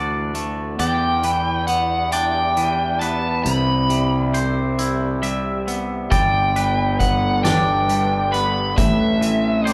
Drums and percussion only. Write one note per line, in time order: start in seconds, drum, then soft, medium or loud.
0.35 closed hi-hat soft
0.79 closed hi-hat medium
1.23 closed hi-hat medium
1.68 closed hi-hat soft
2.12 closed hi-hat medium
2.57 closed hi-hat soft
3.01 closed hi-hat soft
3.46 closed hi-hat medium
3.90 closed hi-hat medium
4.34 closed hi-hat medium
4.79 closed hi-hat medium
5.23 closed hi-hat soft
5.68 closed hi-hat soft
6.12 kick medium
6.12 closed hi-hat medium
6.56 closed hi-hat medium
7.00 kick medium
7.00 closed hi-hat soft
7.45 snare loud
7.45 closed hi-hat medium
7.89 closed hi-hat medium
8.34 closed hi-hat soft
8.78 kick medium
8.78 closed hi-hat medium
9.22 closed hi-hat medium
9.67 closed hi-hat medium